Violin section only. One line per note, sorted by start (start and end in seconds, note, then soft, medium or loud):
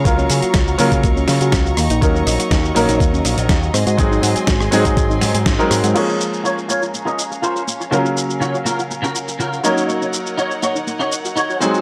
0.00 1.74 F5 medium
0.00 3.70 A#5 medium
0.05 3.70 C#6 medium
1.77 5.91 D#5 medium
3.74 5.93 G#5 medium
3.74 5.93 C6 medium
5.96 9.61 C#4 medium
5.96 7.90 C#5 medium
5.96 9.61 F5 medium
5.96 7.90 A#5 medium
7.91 11.57 A#4 medium
9.64 11.59 D#4 medium
9.64 11.59 C#5 medium
9.64 11.81 F#5 medium
11.61 11.81 G#3 medium
11.61 11.81 G#4 medium
11.61 11.81 C5 medium